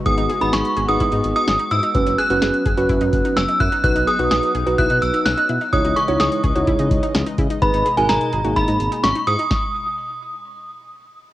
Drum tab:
HH |xxxxxxxxxxxxxxxx|xxxxxxxxxxxxxxxx|xxxxxxxxxxxxxxxx|xxxxxxxxxxxxxxxx|
SD |----o-------o---|----o-------o---|----o-------o---|----o-------o---|
BD |o-------o-------|o-----o-o-o---o-|o-------o-------|o-----o-o-o---o-|

HH |xxxxxxxxxxxxxxxx|----------------|
SD |----o-------o---|o---------------|
BD |o-------o-------|o---------------|